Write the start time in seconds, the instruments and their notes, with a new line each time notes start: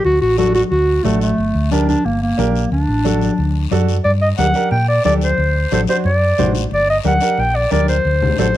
0.05 fingered electric bass D2, clarinet F#4, long guiro
0.21 fingered electric bass A1, clarinet F#4
0.38 upright piano D4 F#4 A4, clarinet F#4, high conga, short guiro
0.54 clarinet F#4, high conga, short guiro
0.71 fingered electric bass D2, clarinet F#4, long guiro
1.04 fingered electric bass A1, clarinet A3, upright piano D4 F#4 A4, high conga, short guiro
1.21 clarinet A3, short guiro
1.38 fingered electric bass G1, long guiro
1.54 fingered electric bass D2
1.71 clarinet D4, upright piano D4 G4 A#4, high conga, short guiro
1.89 clarinet D4, high conga, short guiro
2.05 fingered electric bass G1, clarinet A#3, long guiro
2.22 clarinet A#3
2.38 fingered electric bass A#1, upright piano D4 G4 A#4, high conga, short guiro
2.56 short guiro
2.72 fingered electric bass D2, clarinet D4, long guiro
2.88 fingered electric bass A1
3.05 upright piano D4 F#4 A4, high conga, short guiro
3.21 high conga, short guiro
3.38 fingered electric bass D2, long guiro
3.71 fingered electric bass F#2, upright piano D4 F#4 A4, high conga, short guiro
3.88 short guiro
4.04 fingered electric bass G2, clarinet D5, high conga, long guiro
4.21 clarinet D#5
4.38 fingered electric bass D2, upright piano D4 G4 A#4, clarinet F#5, high conga, short guiro
4.54 upright piano D4 G4 A#4, short guiro
4.71 fingered electric bass A#2, clarinet G5, high conga, long guiro
4.89 clarinet D5
5.04 fingered electric bass D2, upright piano D4 G4 A4, clarinet D5, high conga, short guiro
5.21 clarinet C5, short guiro
5.38 fingered electric bass D2, high conga, long guiro
5.71 fingered electric bass A1, upright piano D4 F#4 A4, clarinet C5, high conga, short guiro
5.87 upright piano D4 F#4 C5, clarinet C5, short guiro
6.04 fingered electric bass F#2, clarinet D5, high conga, long guiro
6.38 fingered electric bass A1, upright piano D4 F#4 C5, high conga, low conga, short guiro
6.55 short guiro
6.71 fingered electric bass G1, clarinet D5, high conga, long guiro
6.90 clarinet D#5
7.04 fingered electric bass D2, upright piano D4 G4 A#4, clarinet F#5, high conga, short guiro
7.20 upright piano D4 G4 A#4, short guiro
7.38 fingered electric bass A#1, clarinet G5, high conga, long guiro
7.56 clarinet D5
7.71 fingered electric bass D2, upright piano D4 G4 A#4, clarinet D5, high conga, short guiro
7.88 clarinet C5, short guiro
8.05 fingered electric bass D2, high conga, long guiro
8.22 low conga
8.38 fingered electric bass A1, upright piano D4 F#4 A4, clarinet C5, high conga, short guiro